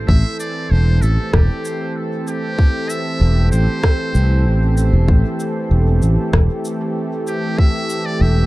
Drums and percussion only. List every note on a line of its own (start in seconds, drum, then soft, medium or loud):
0.09 kick loud
0.40 shaker medium
1.02 shaker medium
1.33 kick loud
1.33 cross-stick medium
1.65 shaker medium
2.27 shaker medium
2.59 kick loud
2.90 shaker medium
3.52 shaker medium
3.83 kick loud
3.83 cross-stick medium
4.15 shaker medium
4.77 shaker medium
5.08 kick loud
5.40 shaker medium
6.02 shaker medium
6.33 kick loud
6.33 cross-stick loud
6.65 shaker medium
7.27 shaker medium
7.58 kick loud
7.90 shaker medium